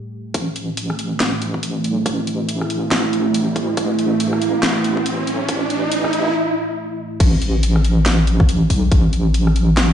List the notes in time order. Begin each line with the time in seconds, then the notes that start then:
Already playing: A3 G4
0.34 A1 A3 E4, kick, closed hi-hat, riser
0.56 closed hi-hat
0.77 closed hi-hat
0.90 cross-stick
0.99 closed hi-hat
1.20 snare, clap, closed hi-hat
1.42 closed hi-hat
1.54 kick
1.63 closed hi-hat
1.84 B1, closed hi-hat
2.06 A1, kick, closed hi-hat
2.27 closed hi-hat
2.49 closed hi-hat
2.61 cross-stick
2.70 closed hi-hat
2.91 snare, clap, closed hi-hat
3.13 closed hi-hat
3.34 closed hi-hat
3.56 D2, kick, closed hi-hat
3.77 A1, kick, closed hi-hat
3.99 closed hi-hat
4.20 closed hi-hat
4.33 cross-stick
4.42 closed hi-hat
4.63 snare, clap, closed hi-hat
4.84 closed hi-hat
4.97 kick
5.06 closed hi-hat
5.27 B1, closed hi-hat
5.49 A1, kick, closed hi-hat
5.70 closed hi-hat
5.92 closed hi-hat
6.04 cross-stick
6.13 closed hi-hat
7.20 A1, kick, closed hi-hat, crash
7.42 closed hi-hat
7.63 closed hi-hat
7.76 cross-stick
7.84 closed hi-hat
8.06 snare, clap, closed hi-hat
8.27 closed hi-hat
8.40 kick
8.49 closed hi-hat
8.70 B1, kick, open hi-hat
8.92 A1, kick, closed hi-hat
9.13 closed hi-hat
9.34 closed hi-hat
9.47 cross-stick
9.56 closed hi-hat
9.77 snare, clap, closed hi-hat